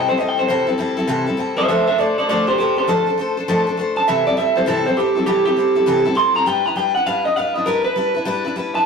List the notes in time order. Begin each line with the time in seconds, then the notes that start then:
0.08 G3 C4 E4 A4 C5
0.18 G3 C4 E4 A4 D#5
0.29 G5
0.38 G3 C4 E4 A4 C5
0.48 C3 E3 G3 C4 E4 A4 C5
0.67 G3 C4 E4 A4
0.78 G3 C4 E4 A4
0.97 G3 C4 E4 A4
1.07 C3 E3 G3 C4 E4 A4
1.26 G3 C4 E4 A4
1.37 G3 C4 E4 A4
1.57 G3 C4 E4 A4 C5 E5
1.68 F3 A3 D4 A4 C5 E5
1.87 D4 A4 C5 E5
1.98 A3 D4 A4 C5 D5
2.18 D4 A4 C5 D5
2.29 F3 A3 D4 A4 C5 D5
2.47 D4 G4 A4 C5
2.58 A3 D4 G4 A4 C5
2.76 D4 G4 A4 C5
2.87 F3 A3 D4 A4 C5
3.07 D4 A4 C5
3.18 A3 D4 A4 C5
3.37 D4 A4 C5
3.48 F3 A3 D4 A4 C5
3.67 D4 A4 C5
3.77 A3 D4 A4 C5
3.96 D4 A4 C5 A5
4.08 C3 E3 G3 C4 E4 A4 E5
4.26 G3 C4 E4 A4 D5
4.37 G3 C4 E4 A4 E5
4.55 G3 C4 E4 A4 C5
4.66 C3 E3 G3 C4 E4 A4
4.86 G3 C4 E4 A4 C5
4.97 G3 C4 E4 G4 A4
5.15 G3 C4 E4 A4
5.26 C3 E3 G3 C4 E4 G4 A4
5.45 G3 C4 E4 G4 A4
5.56 G3 C4 E4 A4
5.75 G3 C4 E4 A4
5.86 C3 E3 G3 C4 E4 A4
6.05 G3 C4 E4 A4
6.15 G3 C4 E4 A4 C6
6.35 G3 C4 E4 A4 A#5
6.46 G3 D4 E4 B4 G5
6.65 D4 E4 B4 A#5
6.76 G3 D4 E4 B4 G5
6.95 D4 E4 B4 F#5
7.06 G3 D4 E4 B4 F5
7.25 D4 E4 B4 D#5
7.36 G3 D4 E4 B4 F5
7.54 E4 B4 D#5
7.58 D4
7.66 G3 D4 E4 A#4 B4
7.84 D4 E4 B4
7.96 G3 D4 E4 B4
8.14 D4 E4 B4
8.25 G3 D4 E4 B4
8.45 D4 E4 B4
8.56 G3 D4 E4 B4
8.75 D4 E4 B4 A5